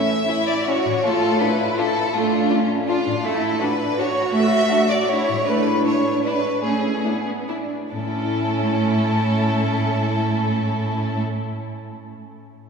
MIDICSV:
0, 0, Header, 1, 6, 480
1, 0, Start_track
1, 0, Key_signature, 3, "major"
1, 0, Tempo, 387347
1, 822, Tempo, 367647
1, 1298, Time_signature, 3, 2, 24, 8
1, 6102, Tempo, 379267
1, 7542, Tempo, 398406
1, 8982, Tempo, 428878
1, 12342, Tempo, 392413
1, 15589, End_track
2, 0, Start_track
2, 0, Title_t, "Violin section"
2, 0, Program_c, 0, 48
2, 0, Note_on_c, 0, 76, 71
2, 570, Note_off_c, 0, 76, 0
2, 573, Note_on_c, 0, 74, 62
2, 817, Note_off_c, 0, 74, 0
2, 839, Note_on_c, 0, 73, 63
2, 1307, Note_off_c, 0, 73, 0
2, 1316, Note_on_c, 0, 69, 67
2, 1786, Note_off_c, 0, 69, 0
2, 1801, Note_on_c, 0, 71, 57
2, 2288, Note_off_c, 0, 71, 0
2, 2312, Note_on_c, 0, 69, 68
2, 2755, Note_off_c, 0, 69, 0
2, 2756, Note_on_c, 0, 65, 60
2, 3473, Note_off_c, 0, 65, 0
2, 3719, Note_on_c, 0, 65, 66
2, 4154, Note_off_c, 0, 65, 0
2, 4189, Note_on_c, 0, 69, 61
2, 4659, Note_on_c, 0, 71, 61
2, 4663, Note_off_c, 0, 69, 0
2, 5159, Note_off_c, 0, 71, 0
2, 5159, Note_on_c, 0, 73, 68
2, 5625, Note_off_c, 0, 73, 0
2, 5625, Note_on_c, 0, 76, 81
2, 6336, Note_off_c, 0, 76, 0
2, 6349, Note_on_c, 0, 74, 61
2, 6578, Note_on_c, 0, 73, 64
2, 6597, Note_off_c, 0, 74, 0
2, 7054, Note_off_c, 0, 73, 0
2, 7054, Note_on_c, 0, 71, 64
2, 7536, Note_off_c, 0, 71, 0
2, 7547, Note_on_c, 0, 73, 54
2, 8023, Note_off_c, 0, 73, 0
2, 8027, Note_on_c, 0, 71, 61
2, 8483, Note_off_c, 0, 71, 0
2, 8503, Note_on_c, 0, 68, 50
2, 9221, Note_off_c, 0, 68, 0
2, 9973, Note_on_c, 0, 69, 49
2, 13773, Note_off_c, 0, 69, 0
2, 15589, End_track
3, 0, Start_track
3, 0, Title_t, "Violin section"
3, 0, Program_c, 1, 48
3, 350, Note_on_c, 1, 61, 33
3, 353, Note_on_c, 1, 64, 33
3, 449, Note_off_c, 1, 61, 0
3, 452, Note_off_c, 1, 64, 0
3, 833, Note_on_c, 1, 61, 42
3, 837, Note_on_c, 1, 64, 41
3, 938, Note_off_c, 1, 61, 0
3, 942, Note_off_c, 1, 64, 0
3, 1765, Note_on_c, 1, 65, 38
3, 1769, Note_on_c, 1, 62, 37
3, 1870, Note_off_c, 1, 65, 0
3, 1873, Note_off_c, 1, 62, 0
3, 2264, Note_on_c, 1, 62, 43
3, 2266, Note_on_c, 1, 65, 40
3, 2368, Note_off_c, 1, 62, 0
3, 2371, Note_off_c, 1, 65, 0
3, 3209, Note_on_c, 1, 62, 38
3, 3217, Note_on_c, 1, 65, 33
3, 3314, Note_off_c, 1, 62, 0
3, 3322, Note_off_c, 1, 65, 0
3, 3716, Note_on_c, 1, 65, 44
3, 3721, Note_on_c, 1, 62, 42
3, 3820, Note_off_c, 1, 65, 0
3, 3826, Note_off_c, 1, 62, 0
3, 4658, Note_on_c, 1, 66, 34
3, 4665, Note_on_c, 1, 62, 35
3, 4762, Note_off_c, 1, 66, 0
3, 4770, Note_off_c, 1, 62, 0
3, 5154, Note_on_c, 1, 62, 41
3, 5159, Note_on_c, 1, 66, 38
3, 5259, Note_off_c, 1, 62, 0
3, 5263, Note_off_c, 1, 66, 0
3, 6095, Note_on_c, 1, 66, 31
3, 6096, Note_on_c, 1, 62, 35
3, 6196, Note_off_c, 1, 66, 0
3, 6197, Note_off_c, 1, 62, 0
3, 6596, Note_on_c, 1, 62, 35
3, 6596, Note_on_c, 1, 66, 38
3, 6697, Note_off_c, 1, 62, 0
3, 6698, Note_off_c, 1, 66, 0
3, 7552, Note_on_c, 1, 62, 33
3, 7555, Note_on_c, 1, 64, 29
3, 7648, Note_off_c, 1, 62, 0
3, 7651, Note_off_c, 1, 64, 0
3, 8037, Note_on_c, 1, 62, 36
3, 8041, Note_on_c, 1, 64, 35
3, 8133, Note_off_c, 1, 62, 0
3, 8137, Note_off_c, 1, 64, 0
3, 8980, Note_on_c, 1, 62, 26
3, 8985, Note_on_c, 1, 64, 23
3, 9070, Note_off_c, 1, 62, 0
3, 9075, Note_off_c, 1, 64, 0
3, 9478, Note_on_c, 1, 62, 30
3, 9480, Note_on_c, 1, 64, 27
3, 9567, Note_off_c, 1, 62, 0
3, 9569, Note_off_c, 1, 64, 0
3, 9962, Note_on_c, 1, 64, 33
3, 9966, Note_on_c, 1, 69, 32
3, 13767, Note_off_c, 1, 64, 0
3, 13769, Note_off_c, 1, 69, 0
3, 15589, End_track
4, 0, Start_track
4, 0, Title_t, "Cello section"
4, 0, Program_c, 2, 48
4, 0, Note_on_c, 2, 61, 43
4, 328, Note_off_c, 2, 61, 0
4, 348, Note_on_c, 2, 64, 52
4, 817, Note_off_c, 2, 64, 0
4, 822, Note_on_c, 2, 66, 48
4, 1289, Note_off_c, 2, 66, 0
4, 1308, Note_on_c, 2, 65, 51
4, 1782, Note_off_c, 2, 65, 0
4, 1784, Note_on_c, 2, 64, 48
4, 2749, Note_off_c, 2, 64, 0
4, 2758, Note_on_c, 2, 62, 48
4, 3216, Note_off_c, 2, 62, 0
4, 3228, Note_on_c, 2, 61, 52
4, 3719, Note_off_c, 2, 61, 0
4, 3723, Note_on_c, 2, 62, 49
4, 4189, Note_off_c, 2, 62, 0
4, 4190, Note_on_c, 2, 64, 54
4, 4664, Note_off_c, 2, 64, 0
4, 4668, Note_on_c, 2, 62, 48
4, 5163, Note_off_c, 2, 62, 0
4, 5165, Note_on_c, 2, 66, 51
4, 6601, Note_off_c, 2, 66, 0
4, 6601, Note_on_c, 2, 64, 45
4, 7056, Note_off_c, 2, 64, 0
4, 7072, Note_on_c, 2, 62, 42
4, 8469, Note_off_c, 2, 62, 0
4, 8507, Note_on_c, 2, 61, 36
4, 8988, Note_off_c, 2, 61, 0
4, 8994, Note_on_c, 2, 59, 38
4, 9476, Note_off_c, 2, 59, 0
4, 9490, Note_on_c, 2, 62, 33
4, 9735, Note_off_c, 2, 62, 0
4, 9976, Note_on_c, 2, 45, 38
4, 13774, Note_off_c, 2, 45, 0
4, 15589, End_track
5, 0, Start_track
5, 0, Title_t, "Harp"
5, 0, Program_c, 3, 46
5, 0, Note_on_c, 3, 45, 42
5, 0, Note_on_c, 3, 57, 32
5, 0, Note_on_c, 3, 64, 33
5, 0, Note_on_c, 3, 73, 33
5, 1051, Note_off_c, 3, 45, 0
5, 1067, Note_on_c, 3, 45, 46
5, 1108, Note_off_c, 3, 57, 0
5, 1124, Note_on_c, 3, 57, 39
5, 1182, Note_on_c, 3, 65, 38
5, 1240, Note_on_c, 3, 74, 37
5, 1252, Note_off_c, 3, 64, 0
5, 1283, Note_off_c, 3, 73, 0
5, 3938, Note_off_c, 3, 45, 0
5, 3953, Note_on_c, 3, 45, 40
5, 3992, Note_off_c, 3, 57, 0
5, 4008, Note_on_c, 3, 57, 37
5, 4066, Note_on_c, 3, 66, 41
5, 4110, Note_off_c, 3, 74, 0
5, 4126, Note_on_c, 3, 74, 39
5, 4145, Note_off_c, 3, 65, 0
5, 6819, Note_off_c, 3, 45, 0
5, 6834, Note_on_c, 3, 45, 37
5, 6887, Note_on_c, 3, 56, 32
5, 6947, Note_on_c, 3, 64, 35
5, 6989, Note_off_c, 3, 74, 0
5, 6996, Note_off_c, 3, 57, 0
5, 7024, Note_off_c, 3, 66, 0
5, 9881, Note_off_c, 3, 45, 0
5, 9905, Note_off_c, 3, 56, 0
5, 9961, Note_on_c, 3, 45, 28
5, 10040, Note_on_c, 3, 57, 33
5, 10105, Note_off_c, 3, 64, 0
5, 10118, Note_on_c, 3, 64, 33
5, 10197, Note_on_c, 3, 73, 30
5, 10276, Note_on_c, 3, 76, 28
5, 14622, Note_off_c, 3, 45, 0
5, 14666, Note_off_c, 3, 57, 0
5, 14708, Note_off_c, 3, 64, 0
5, 14751, Note_off_c, 3, 73, 0
5, 14795, Note_off_c, 3, 76, 0
5, 15589, End_track
6, 0, Start_track
6, 0, Title_t, "Viola section"
6, 0, Program_c, 4, 48
6, 0, Note_on_c, 4, 57, 50
6, 254, Note_off_c, 4, 57, 0
6, 1309, Note_on_c, 4, 57, 60
6, 1699, Note_off_c, 4, 57, 0
6, 2753, Note_on_c, 4, 57, 66
6, 3141, Note_off_c, 4, 57, 0
6, 4185, Note_on_c, 4, 57, 63
6, 4578, Note_off_c, 4, 57, 0
6, 5622, Note_on_c, 4, 57, 60
6, 6016, Note_off_c, 4, 57, 0
6, 7057, Note_on_c, 4, 57, 52
6, 7454, Note_off_c, 4, 57, 0
6, 8485, Note_on_c, 4, 57, 46
6, 8891, Note_off_c, 4, 57, 0
6, 9962, Note_on_c, 4, 61, 42
6, 9967, Note_on_c, 4, 57, 39
6, 13766, Note_off_c, 4, 61, 0
6, 13769, Note_off_c, 4, 57, 0
6, 15589, End_track
0, 0, End_of_file